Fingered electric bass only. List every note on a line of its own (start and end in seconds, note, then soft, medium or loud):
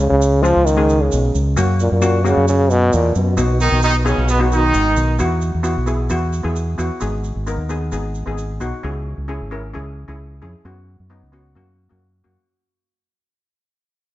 0.11 0.53 C#2 medium
0.56 1.09 C#2 loud
1.14 1.34 B1 medium
1.35 1.56 C#2 medium
1.58 1.90 F#2 loud
1.92 2.34 F#2 medium
2.37 2.90 F#2 medium
2.94 3.15 E2 medium
3.16 3.37 F#2 loud
3.38 3.70 B1 loud
3.72 4.15 B1 medium
4.18 4.71 B1 medium
4.74 4.95 G#1 medium
4.97 5.18 B1 medium
5.20 5.52 E2 medium
5.55 5.75 E2 medium
5.77 6.09 B1 medium
6.11 6.42 E2 medium
6.45 6.76 E2 medium
6.79 6.89 E2 medium
7.02 7.33 G#1 medium
7.36 7.57 G#1 medium
7.57 7.90 D#2 medium
7.92 8.24 G#1 medium
8.27 8.58 G#1 medium
8.61 8.71 B1 medium
8.84 9.16 C#2 medium
9.18 9.39 C#2 medium
9.41 9.72 G#1 medium
9.76 10.07 C#2 medium
10.08 10.40 C#2 medium
10.43 10.53 F2 medium
10.65 10.97 F#2 medium
11.00 11.21 F#2 medium
11.23 11.55 C#2 medium
11.56 11.88 F#2 medium
11.92 12.23 F#2 medium
12.26 12.36 F#2 medium